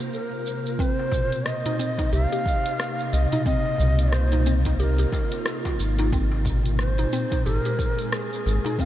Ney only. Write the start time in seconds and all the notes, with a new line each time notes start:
0.14 A#4
0.81 C5
1.47 D#5
2.14 E5
2.25 F5
3.13 D#5
3.46 D#5
4.12 C5
4.79 A#4
6.79 C5
7.46 A4
7.59 A#4
8.13 G#4
8.80 F5